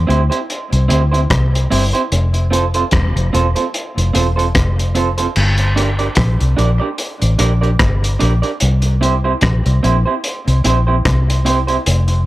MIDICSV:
0, 0, Header, 1, 4, 480
1, 0, Start_track
1, 0, Tempo, 812348
1, 1250, Time_signature, 4, 2, 24, 8
1, 7245, End_track
2, 0, Start_track
2, 0, Title_t, "Clean electric guitar"
2, 0, Program_c, 0, 27
2, 42, Note_on_c, 0, 60, 84
2, 49, Note_on_c, 0, 64, 84
2, 51, Note_on_c, 0, 67, 90
2, 54, Note_on_c, 0, 72, 90
2, 116, Note_off_c, 0, 60, 0
2, 119, Note_off_c, 0, 64, 0
2, 120, Note_off_c, 0, 67, 0
2, 122, Note_off_c, 0, 72, 0
2, 176, Note_on_c, 0, 72, 61
2, 181, Note_on_c, 0, 67, 63
2, 184, Note_on_c, 0, 64, 61
2, 188, Note_on_c, 0, 60, 56
2, 223, Note_off_c, 0, 72, 0
2, 226, Note_off_c, 0, 67, 0
2, 227, Note_off_c, 0, 64, 0
2, 229, Note_off_c, 0, 60, 0
2, 522, Note_on_c, 0, 60, 75
2, 526, Note_on_c, 0, 64, 73
2, 529, Note_on_c, 0, 67, 79
2, 533, Note_on_c, 0, 72, 79
2, 595, Note_off_c, 0, 60, 0
2, 598, Note_off_c, 0, 64, 0
2, 599, Note_off_c, 0, 67, 0
2, 601, Note_off_c, 0, 72, 0
2, 659, Note_on_c, 0, 72, 67
2, 665, Note_on_c, 0, 67, 61
2, 667, Note_on_c, 0, 64, 54
2, 672, Note_on_c, 0, 60, 52
2, 705, Note_off_c, 0, 72, 0
2, 707, Note_off_c, 0, 67, 0
2, 708, Note_off_c, 0, 64, 0
2, 711, Note_off_c, 0, 60, 0
2, 1007, Note_on_c, 0, 60, 86
2, 1011, Note_on_c, 0, 64, 85
2, 1014, Note_on_c, 0, 67, 88
2, 1017, Note_on_c, 0, 72, 85
2, 1078, Note_off_c, 0, 60, 0
2, 1080, Note_off_c, 0, 64, 0
2, 1081, Note_off_c, 0, 67, 0
2, 1083, Note_off_c, 0, 72, 0
2, 1142, Note_on_c, 0, 72, 68
2, 1147, Note_on_c, 0, 67, 54
2, 1149, Note_on_c, 0, 64, 59
2, 1153, Note_on_c, 0, 60, 52
2, 1186, Note_off_c, 0, 72, 0
2, 1188, Note_off_c, 0, 67, 0
2, 1190, Note_off_c, 0, 64, 0
2, 1192, Note_off_c, 0, 60, 0
2, 1481, Note_on_c, 0, 60, 82
2, 1486, Note_on_c, 0, 65, 82
2, 1491, Note_on_c, 0, 69, 89
2, 1495, Note_on_c, 0, 72, 95
2, 1555, Note_off_c, 0, 60, 0
2, 1558, Note_off_c, 0, 65, 0
2, 1560, Note_off_c, 0, 69, 0
2, 1562, Note_off_c, 0, 72, 0
2, 1623, Note_on_c, 0, 72, 59
2, 1626, Note_on_c, 0, 69, 55
2, 1631, Note_on_c, 0, 65, 50
2, 1635, Note_on_c, 0, 60, 48
2, 1667, Note_off_c, 0, 72, 0
2, 1668, Note_off_c, 0, 69, 0
2, 1670, Note_off_c, 0, 65, 0
2, 1672, Note_off_c, 0, 60, 0
2, 1967, Note_on_c, 0, 60, 84
2, 1972, Note_on_c, 0, 65, 94
2, 1976, Note_on_c, 0, 69, 94
2, 1978, Note_on_c, 0, 72, 102
2, 2038, Note_off_c, 0, 60, 0
2, 2041, Note_off_c, 0, 65, 0
2, 2042, Note_off_c, 0, 69, 0
2, 2044, Note_off_c, 0, 72, 0
2, 2100, Note_on_c, 0, 72, 57
2, 2103, Note_on_c, 0, 69, 58
2, 2108, Note_on_c, 0, 65, 53
2, 2110, Note_on_c, 0, 60, 44
2, 2145, Note_off_c, 0, 72, 0
2, 2147, Note_off_c, 0, 69, 0
2, 2149, Note_off_c, 0, 65, 0
2, 2150, Note_off_c, 0, 60, 0
2, 2443, Note_on_c, 0, 60, 74
2, 2448, Note_on_c, 0, 65, 90
2, 2451, Note_on_c, 0, 69, 83
2, 2452, Note_on_c, 0, 72, 84
2, 2516, Note_off_c, 0, 60, 0
2, 2519, Note_off_c, 0, 65, 0
2, 2520, Note_off_c, 0, 69, 0
2, 2521, Note_off_c, 0, 72, 0
2, 2577, Note_on_c, 0, 72, 59
2, 2583, Note_on_c, 0, 69, 58
2, 2584, Note_on_c, 0, 65, 47
2, 2589, Note_on_c, 0, 60, 45
2, 2624, Note_off_c, 0, 72, 0
2, 2627, Note_off_c, 0, 65, 0
2, 2627, Note_off_c, 0, 69, 0
2, 2630, Note_off_c, 0, 60, 0
2, 2923, Note_on_c, 0, 60, 69
2, 2930, Note_on_c, 0, 65, 72
2, 2932, Note_on_c, 0, 69, 75
2, 2935, Note_on_c, 0, 72, 75
2, 2996, Note_off_c, 0, 60, 0
2, 3000, Note_off_c, 0, 65, 0
2, 3001, Note_off_c, 0, 69, 0
2, 3002, Note_off_c, 0, 72, 0
2, 3058, Note_on_c, 0, 72, 59
2, 3062, Note_on_c, 0, 69, 54
2, 3066, Note_on_c, 0, 65, 54
2, 3069, Note_on_c, 0, 60, 55
2, 3104, Note_off_c, 0, 72, 0
2, 3106, Note_off_c, 0, 69, 0
2, 3108, Note_off_c, 0, 65, 0
2, 3110, Note_off_c, 0, 60, 0
2, 3403, Note_on_c, 0, 62, 82
2, 3408, Note_on_c, 0, 67, 96
2, 3411, Note_on_c, 0, 70, 85
2, 3412, Note_on_c, 0, 74, 88
2, 3476, Note_off_c, 0, 62, 0
2, 3479, Note_off_c, 0, 67, 0
2, 3480, Note_off_c, 0, 70, 0
2, 3481, Note_off_c, 0, 74, 0
2, 3537, Note_on_c, 0, 74, 62
2, 3541, Note_on_c, 0, 70, 60
2, 3545, Note_on_c, 0, 67, 56
2, 3547, Note_on_c, 0, 62, 49
2, 3584, Note_off_c, 0, 74, 0
2, 3586, Note_off_c, 0, 70, 0
2, 3588, Note_off_c, 0, 67, 0
2, 3589, Note_off_c, 0, 62, 0
2, 3880, Note_on_c, 0, 62, 84
2, 3884, Note_on_c, 0, 67, 73
2, 3888, Note_on_c, 0, 70, 89
2, 3891, Note_on_c, 0, 74, 91
2, 3955, Note_off_c, 0, 62, 0
2, 3957, Note_off_c, 0, 67, 0
2, 3959, Note_off_c, 0, 70, 0
2, 3960, Note_off_c, 0, 74, 0
2, 4016, Note_on_c, 0, 74, 59
2, 4024, Note_on_c, 0, 70, 56
2, 4025, Note_on_c, 0, 67, 61
2, 4030, Note_on_c, 0, 62, 56
2, 4063, Note_off_c, 0, 74, 0
2, 4067, Note_off_c, 0, 70, 0
2, 4068, Note_off_c, 0, 67, 0
2, 4070, Note_off_c, 0, 62, 0
2, 4364, Note_on_c, 0, 62, 75
2, 4367, Note_on_c, 0, 67, 71
2, 4371, Note_on_c, 0, 70, 79
2, 4375, Note_on_c, 0, 74, 88
2, 4437, Note_off_c, 0, 62, 0
2, 4438, Note_off_c, 0, 67, 0
2, 4441, Note_off_c, 0, 70, 0
2, 4442, Note_off_c, 0, 74, 0
2, 4498, Note_on_c, 0, 74, 58
2, 4501, Note_on_c, 0, 70, 63
2, 4506, Note_on_c, 0, 67, 56
2, 4508, Note_on_c, 0, 62, 49
2, 4544, Note_off_c, 0, 74, 0
2, 4546, Note_off_c, 0, 70, 0
2, 4548, Note_off_c, 0, 67, 0
2, 4549, Note_off_c, 0, 62, 0
2, 4841, Note_on_c, 0, 62, 77
2, 4846, Note_on_c, 0, 67, 84
2, 4847, Note_on_c, 0, 70, 81
2, 4850, Note_on_c, 0, 74, 89
2, 4915, Note_off_c, 0, 62, 0
2, 4918, Note_off_c, 0, 67, 0
2, 4918, Note_off_c, 0, 70, 0
2, 4920, Note_off_c, 0, 74, 0
2, 4976, Note_on_c, 0, 74, 64
2, 4980, Note_on_c, 0, 70, 58
2, 4983, Note_on_c, 0, 67, 58
2, 4987, Note_on_c, 0, 62, 58
2, 5023, Note_off_c, 0, 74, 0
2, 5025, Note_off_c, 0, 70, 0
2, 5027, Note_off_c, 0, 67, 0
2, 5029, Note_off_c, 0, 62, 0
2, 5323, Note_on_c, 0, 60, 85
2, 5326, Note_on_c, 0, 64, 80
2, 5330, Note_on_c, 0, 67, 86
2, 5332, Note_on_c, 0, 72, 87
2, 5396, Note_off_c, 0, 60, 0
2, 5398, Note_off_c, 0, 64, 0
2, 5400, Note_off_c, 0, 67, 0
2, 5401, Note_off_c, 0, 72, 0
2, 5461, Note_on_c, 0, 72, 63
2, 5464, Note_on_c, 0, 67, 60
2, 5466, Note_on_c, 0, 64, 60
2, 5468, Note_on_c, 0, 60, 55
2, 5506, Note_off_c, 0, 72, 0
2, 5507, Note_off_c, 0, 67, 0
2, 5508, Note_off_c, 0, 64, 0
2, 5509, Note_off_c, 0, 60, 0
2, 5808, Note_on_c, 0, 60, 89
2, 5813, Note_on_c, 0, 64, 95
2, 5816, Note_on_c, 0, 67, 76
2, 5819, Note_on_c, 0, 72, 88
2, 5879, Note_off_c, 0, 60, 0
2, 5881, Note_off_c, 0, 64, 0
2, 5883, Note_off_c, 0, 67, 0
2, 5884, Note_off_c, 0, 72, 0
2, 5942, Note_on_c, 0, 72, 57
2, 5948, Note_on_c, 0, 67, 55
2, 5951, Note_on_c, 0, 64, 56
2, 5954, Note_on_c, 0, 60, 54
2, 5986, Note_off_c, 0, 72, 0
2, 5989, Note_off_c, 0, 67, 0
2, 5991, Note_off_c, 0, 64, 0
2, 5992, Note_off_c, 0, 60, 0
2, 6289, Note_on_c, 0, 60, 79
2, 6293, Note_on_c, 0, 64, 76
2, 6295, Note_on_c, 0, 67, 84
2, 6300, Note_on_c, 0, 72, 86
2, 6359, Note_off_c, 0, 60, 0
2, 6361, Note_off_c, 0, 64, 0
2, 6362, Note_off_c, 0, 67, 0
2, 6365, Note_off_c, 0, 72, 0
2, 6422, Note_on_c, 0, 72, 57
2, 6428, Note_on_c, 0, 67, 62
2, 6430, Note_on_c, 0, 64, 58
2, 6434, Note_on_c, 0, 60, 50
2, 6466, Note_off_c, 0, 72, 0
2, 6469, Note_off_c, 0, 67, 0
2, 6470, Note_off_c, 0, 64, 0
2, 6472, Note_off_c, 0, 60, 0
2, 6765, Note_on_c, 0, 60, 78
2, 6768, Note_on_c, 0, 64, 75
2, 6771, Note_on_c, 0, 67, 80
2, 6775, Note_on_c, 0, 72, 88
2, 6837, Note_off_c, 0, 60, 0
2, 6838, Note_off_c, 0, 64, 0
2, 6840, Note_off_c, 0, 67, 0
2, 6842, Note_off_c, 0, 72, 0
2, 6898, Note_on_c, 0, 72, 67
2, 6903, Note_on_c, 0, 67, 65
2, 6907, Note_on_c, 0, 64, 58
2, 6910, Note_on_c, 0, 60, 56
2, 6944, Note_off_c, 0, 72, 0
2, 6946, Note_off_c, 0, 67, 0
2, 6948, Note_off_c, 0, 64, 0
2, 6950, Note_off_c, 0, 60, 0
2, 7245, End_track
3, 0, Start_track
3, 0, Title_t, "Fingered electric bass"
3, 0, Program_c, 1, 33
3, 55, Note_on_c, 1, 38, 97
3, 171, Note_off_c, 1, 38, 0
3, 430, Note_on_c, 1, 36, 93
3, 520, Note_off_c, 1, 36, 0
3, 535, Note_on_c, 1, 38, 86
3, 743, Note_off_c, 1, 38, 0
3, 775, Note_on_c, 1, 36, 81
3, 983, Note_off_c, 1, 36, 0
3, 1016, Note_on_c, 1, 31, 91
3, 1131, Note_off_c, 1, 31, 0
3, 1254, Note_on_c, 1, 29, 98
3, 1673, Note_off_c, 1, 29, 0
3, 1730, Note_on_c, 1, 28, 96
3, 1848, Note_off_c, 1, 28, 0
3, 1868, Note_on_c, 1, 29, 88
3, 1959, Note_off_c, 1, 29, 0
3, 1976, Note_on_c, 1, 28, 91
3, 2091, Note_off_c, 1, 28, 0
3, 2348, Note_on_c, 1, 29, 82
3, 2439, Note_off_c, 1, 29, 0
3, 2456, Note_on_c, 1, 28, 86
3, 2664, Note_off_c, 1, 28, 0
3, 2691, Note_on_c, 1, 29, 95
3, 3112, Note_off_c, 1, 29, 0
3, 3171, Note_on_c, 1, 31, 103
3, 3592, Note_off_c, 1, 31, 0
3, 3648, Note_on_c, 1, 34, 94
3, 3767, Note_off_c, 1, 34, 0
3, 3789, Note_on_c, 1, 36, 89
3, 3880, Note_off_c, 1, 36, 0
3, 3892, Note_on_c, 1, 34, 99
3, 4009, Note_off_c, 1, 34, 0
3, 4267, Note_on_c, 1, 33, 87
3, 4359, Note_off_c, 1, 33, 0
3, 4372, Note_on_c, 1, 34, 97
3, 4582, Note_off_c, 1, 34, 0
3, 4611, Note_on_c, 1, 31, 85
3, 4821, Note_off_c, 1, 31, 0
3, 4855, Note_on_c, 1, 34, 106
3, 4971, Note_off_c, 1, 34, 0
3, 5095, Note_on_c, 1, 36, 103
3, 5514, Note_off_c, 1, 36, 0
3, 5573, Note_on_c, 1, 34, 99
3, 5690, Note_off_c, 1, 34, 0
3, 5710, Note_on_c, 1, 36, 90
3, 5800, Note_off_c, 1, 36, 0
3, 5818, Note_on_c, 1, 34, 100
3, 5932, Note_off_c, 1, 34, 0
3, 6190, Note_on_c, 1, 36, 104
3, 6280, Note_off_c, 1, 36, 0
3, 6294, Note_on_c, 1, 34, 95
3, 6503, Note_off_c, 1, 34, 0
3, 6536, Note_on_c, 1, 36, 88
3, 6954, Note_off_c, 1, 36, 0
3, 7015, Note_on_c, 1, 29, 121
3, 7245, Note_off_c, 1, 29, 0
3, 7245, End_track
4, 0, Start_track
4, 0, Title_t, "Drums"
4, 60, Note_on_c, 9, 42, 50
4, 119, Note_off_c, 9, 42, 0
4, 188, Note_on_c, 9, 42, 52
4, 247, Note_off_c, 9, 42, 0
4, 295, Note_on_c, 9, 42, 72
4, 354, Note_off_c, 9, 42, 0
4, 429, Note_on_c, 9, 42, 53
4, 488, Note_off_c, 9, 42, 0
4, 532, Note_on_c, 9, 42, 84
4, 591, Note_off_c, 9, 42, 0
4, 674, Note_on_c, 9, 42, 41
4, 733, Note_off_c, 9, 42, 0
4, 770, Note_on_c, 9, 36, 116
4, 772, Note_on_c, 9, 37, 115
4, 772, Note_on_c, 9, 42, 97
4, 829, Note_off_c, 9, 36, 0
4, 831, Note_off_c, 9, 37, 0
4, 831, Note_off_c, 9, 42, 0
4, 917, Note_on_c, 9, 42, 70
4, 976, Note_off_c, 9, 42, 0
4, 1013, Note_on_c, 9, 46, 70
4, 1073, Note_off_c, 9, 46, 0
4, 1150, Note_on_c, 9, 42, 50
4, 1209, Note_off_c, 9, 42, 0
4, 1252, Note_on_c, 9, 42, 88
4, 1311, Note_off_c, 9, 42, 0
4, 1382, Note_on_c, 9, 42, 47
4, 1441, Note_off_c, 9, 42, 0
4, 1495, Note_on_c, 9, 42, 65
4, 1554, Note_off_c, 9, 42, 0
4, 1619, Note_on_c, 9, 42, 56
4, 1678, Note_off_c, 9, 42, 0
4, 1721, Note_on_c, 9, 42, 73
4, 1728, Note_on_c, 9, 36, 112
4, 1730, Note_on_c, 9, 37, 103
4, 1780, Note_off_c, 9, 42, 0
4, 1787, Note_off_c, 9, 36, 0
4, 1789, Note_off_c, 9, 37, 0
4, 1871, Note_on_c, 9, 42, 48
4, 1930, Note_off_c, 9, 42, 0
4, 1976, Note_on_c, 9, 42, 61
4, 2035, Note_off_c, 9, 42, 0
4, 2103, Note_on_c, 9, 42, 56
4, 2162, Note_off_c, 9, 42, 0
4, 2211, Note_on_c, 9, 42, 73
4, 2270, Note_off_c, 9, 42, 0
4, 2351, Note_on_c, 9, 42, 54
4, 2410, Note_off_c, 9, 42, 0
4, 2450, Note_on_c, 9, 42, 83
4, 2509, Note_off_c, 9, 42, 0
4, 2593, Note_on_c, 9, 42, 44
4, 2652, Note_off_c, 9, 42, 0
4, 2688, Note_on_c, 9, 36, 124
4, 2689, Note_on_c, 9, 37, 116
4, 2690, Note_on_c, 9, 42, 103
4, 2747, Note_off_c, 9, 36, 0
4, 2748, Note_off_c, 9, 37, 0
4, 2749, Note_off_c, 9, 42, 0
4, 2832, Note_on_c, 9, 42, 61
4, 2891, Note_off_c, 9, 42, 0
4, 2926, Note_on_c, 9, 42, 73
4, 2985, Note_off_c, 9, 42, 0
4, 3059, Note_on_c, 9, 42, 56
4, 3118, Note_off_c, 9, 42, 0
4, 3165, Note_on_c, 9, 49, 87
4, 3224, Note_off_c, 9, 49, 0
4, 3294, Note_on_c, 9, 42, 51
4, 3354, Note_off_c, 9, 42, 0
4, 3411, Note_on_c, 9, 42, 61
4, 3470, Note_off_c, 9, 42, 0
4, 3538, Note_on_c, 9, 42, 35
4, 3597, Note_off_c, 9, 42, 0
4, 3635, Note_on_c, 9, 42, 78
4, 3645, Note_on_c, 9, 36, 114
4, 3645, Note_on_c, 9, 37, 108
4, 3694, Note_off_c, 9, 42, 0
4, 3704, Note_off_c, 9, 37, 0
4, 3705, Note_off_c, 9, 36, 0
4, 3784, Note_on_c, 9, 42, 46
4, 3843, Note_off_c, 9, 42, 0
4, 3891, Note_on_c, 9, 42, 58
4, 3950, Note_off_c, 9, 42, 0
4, 4125, Note_on_c, 9, 42, 75
4, 4184, Note_off_c, 9, 42, 0
4, 4264, Note_on_c, 9, 42, 61
4, 4323, Note_off_c, 9, 42, 0
4, 4366, Note_on_c, 9, 42, 90
4, 4425, Note_off_c, 9, 42, 0
4, 4510, Note_on_c, 9, 42, 31
4, 4569, Note_off_c, 9, 42, 0
4, 4605, Note_on_c, 9, 37, 117
4, 4606, Note_on_c, 9, 42, 104
4, 4607, Note_on_c, 9, 36, 124
4, 4664, Note_off_c, 9, 37, 0
4, 4665, Note_off_c, 9, 42, 0
4, 4666, Note_off_c, 9, 36, 0
4, 4750, Note_on_c, 9, 42, 69
4, 4809, Note_off_c, 9, 42, 0
4, 4847, Note_on_c, 9, 42, 73
4, 4906, Note_off_c, 9, 42, 0
4, 4982, Note_on_c, 9, 42, 38
4, 5041, Note_off_c, 9, 42, 0
4, 5083, Note_on_c, 9, 42, 94
4, 5142, Note_off_c, 9, 42, 0
4, 5211, Note_on_c, 9, 42, 52
4, 5270, Note_off_c, 9, 42, 0
4, 5334, Note_on_c, 9, 42, 62
4, 5393, Note_off_c, 9, 42, 0
4, 5561, Note_on_c, 9, 42, 74
4, 5569, Note_on_c, 9, 36, 102
4, 5571, Note_on_c, 9, 37, 102
4, 5620, Note_off_c, 9, 42, 0
4, 5628, Note_off_c, 9, 36, 0
4, 5630, Note_off_c, 9, 37, 0
4, 5706, Note_on_c, 9, 42, 49
4, 5765, Note_off_c, 9, 42, 0
4, 5814, Note_on_c, 9, 42, 55
4, 5874, Note_off_c, 9, 42, 0
4, 6049, Note_on_c, 9, 42, 81
4, 6108, Note_off_c, 9, 42, 0
4, 6190, Note_on_c, 9, 42, 56
4, 6249, Note_off_c, 9, 42, 0
4, 6290, Note_on_c, 9, 42, 87
4, 6349, Note_off_c, 9, 42, 0
4, 6531, Note_on_c, 9, 36, 127
4, 6531, Note_on_c, 9, 37, 118
4, 6532, Note_on_c, 9, 42, 103
4, 6590, Note_off_c, 9, 36, 0
4, 6590, Note_off_c, 9, 37, 0
4, 6591, Note_off_c, 9, 42, 0
4, 6676, Note_on_c, 9, 42, 73
4, 6735, Note_off_c, 9, 42, 0
4, 6771, Note_on_c, 9, 42, 81
4, 6830, Note_off_c, 9, 42, 0
4, 6903, Note_on_c, 9, 42, 36
4, 6962, Note_off_c, 9, 42, 0
4, 7009, Note_on_c, 9, 42, 97
4, 7068, Note_off_c, 9, 42, 0
4, 7136, Note_on_c, 9, 42, 49
4, 7196, Note_off_c, 9, 42, 0
4, 7245, End_track
0, 0, End_of_file